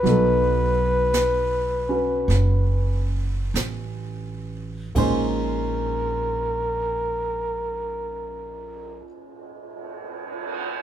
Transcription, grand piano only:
0, 0, Header, 1, 2, 480
1, 0, Start_track
1, 0, Tempo, 1075269
1, 21, Time_signature, 4, 2, 24, 8
1, 501, Tempo, 1156069
1, 981, Tempo, 1263158
1, 1461, Tempo, 1401869
1, 1941, Tempo, 1481481
1, 3845, End_track
2, 0, Start_track
2, 0, Title_t, "Grand piano"
2, 0, Program_c, 0, 0
2, 0, Control_c, 0, 64, 127
2, 13, Note_on_c, 0, 54, 43
2, 24, Note_on_c, 0, 59, 42
2, 25, Note_on_c, 0, 63, 41
2, 27, Control_c, 0, 64, 0
2, 36, Note_on_c, 0, 69, 47
2, 93, Control_c, 0, 64, 127
2, 820, Note_on_c, 0, 61, 40
2, 824, Note_on_c, 0, 66, 37
2, 833, Note_on_c, 0, 71, 44
2, 1939, Note_off_c, 0, 54, 0
2, 1942, Note_off_c, 0, 61, 0
2, 1943, Note_off_c, 0, 59, 0
2, 1943, Note_on_c, 0, 46, 55
2, 1944, Note_off_c, 0, 63, 0
2, 1945, Note_off_c, 0, 66, 0
2, 1946, Control_c, 0, 64, 0
2, 1946, Note_on_c, 0, 56, 47
2, 1947, Note_on_c, 0, 61, 50
2, 1948, Note_off_c, 0, 69, 0
2, 1948, Note_off_c, 0, 71, 0
2, 1951, Note_on_c, 0, 63, 46
2, 1953, Note_on_c, 0, 72, 58
2, 1994, Control_c, 0, 64, 127
2, 3267, Note_off_c, 0, 46, 0
2, 3270, Note_off_c, 0, 56, 0
2, 3271, Note_off_c, 0, 61, 0
2, 3275, Note_off_c, 0, 63, 0
2, 3277, Note_off_c, 0, 72, 0
2, 3845, End_track
0, 0, End_of_file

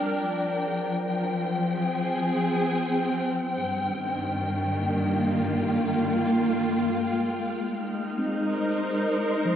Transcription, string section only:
0, 0, Header, 1, 2, 480
1, 0, Start_track
1, 0, Tempo, 836820
1, 137, Time_signature, 4, 2, 24, 8
1, 5483, End_track
2, 0, Start_track
2, 0, Title_t, "String section"
2, 0, Program_c, 0, 48
2, 0, Note_on_c, 0, 55, 75
2, 0, Note_on_c, 0, 62, 65
2, 0, Note_on_c, 0, 70, 65
2, 0, Note_on_c, 0, 79, 64
2, 112, Note_on_c, 0, 53, 69
2, 143, Note_off_c, 0, 55, 0
2, 734, Note_on_c, 0, 60, 64
2, 905, Note_off_c, 0, 62, 0
2, 913, Note_off_c, 0, 70, 0
2, 1012, Note_on_c, 0, 68, 73
2, 2052, Note_off_c, 0, 53, 0
2, 2064, Note_on_c, 0, 43, 67
2, 2066, Note_off_c, 0, 68, 0
2, 2202, Note_on_c, 0, 51, 61
2, 2718, Note_on_c, 0, 58, 71
2, 2827, Note_off_c, 0, 60, 0
2, 2915, Note_on_c, 0, 65, 64
2, 3974, Note_off_c, 0, 51, 0
2, 3975, Note_off_c, 0, 43, 0
2, 3975, Note_on_c, 0, 56, 60
2, 4472, Note_on_c, 0, 63, 69
2, 4680, Note_off_c, 0, 79, 0
2, 4735, Note_off_c, 0, 58, 0
2, 4736, Note_off_c, 0, 65, 0
2, 4828, Note_on_c, 0, 72, 63
2, 4836, Note_on_c, 0, 70, 72
2, 5483, Note_off_c, 0, 56, 0
2, 5483, Note_off_c, 0, 63, 0
2, 5483, Note_off_c, 0, 70, 0
2, 5483, Note_off_c, 0, 72, 0
2, 5483, End_track
0, 0, End_of_file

